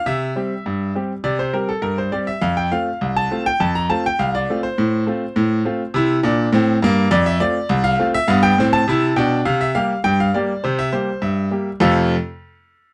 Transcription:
<<
  \new Staff \with { instrumentName = "Grand piano" } { \time 2/4 \key f \major \tempo 4 = 102 e''2 | d''16 c''16 bes'16 a'16 bes'16 c''16 d''16 e''16 | f''16 g''16 f''8. a''8 g''16 | a''16 bes''16 a''16 g''16 f''16 d''8 c''16~ |
c''2~ | c''4. r8 | d''16 e''16 d''8. f''8 e''16 | f''16 g''8 a''8. g''8 |
f''16 e''16 f''8 g''16 f''16 d''8 | c''16 e''16 c''8 e''4 | <f, c a c' f' a' f''>8 r4. | }
  \new Staff \with { instrumentName = "Grand piano" } { \time 2/4 \key f \major c8 <g c' g'>8 g,8 <g c' g'>8 | c8 <g c' g'>8 g,8 <g c' g'>8 | f,8 <a c' f'>8 c,8 <a c' f'>8 | f,8 <a c' f'>8 c,8 <a c' f'>8 |
a,8 <a c' f'>8 a,8 <a c' f'>8 | <c e'>8 <bes, d'>8 <a, c'>8 <g, bes>8 | f,8 <a c' f'>8 c,8 <a c' f'>8 | <g, b>8 <a, c'>8 <c e'>8 <b, d'>8 |
c8 <g bes g'>8 g,8 <g bes g'>8 | c8 <g bes g'>8 g,8 <g bes g'>8 | r2 | }
>>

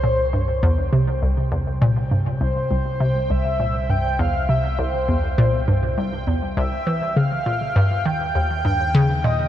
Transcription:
<<
  \new Staff \with { instrumentName = "Synth texture" } { \time 4/4 \key c \phrygian \tempo 4 = 101 g''1~ | g''1~ | g''1~ | g''1 | }
  \new Staff \with { instrumentName = "Soft synth lead" } { \time 4/4 \key c \phrygian c''4. r2 r8 | c''4. e''4 g''8 f''8 e''8 | c''2 r4 e''4 | f''4. g''2 ees''8 | }
  \new Staff \with { instrumentName = "Synth arpeggio sound" } { \clef bass \time 4/4 \key c \phrygian bes,8 g,8 e,8 c8 c,8 e,8 bes,8 g,8 | c,8 c,8 c8 c,8 bes,8 g,8 e,8 c8 | c,8 e,8 bes,8 g,8 c,8 e,8 c,8 e8 | des8 bes,8 g,8 ees8 ees,8 g,8 des8 bes,8 | }
  \new Staff \with { instrumentName = "Synth drone" } { \clef bass \time 4/4 \key c \phrygian c,1~ | c,1~ | c,1 | ees,1 | }
>>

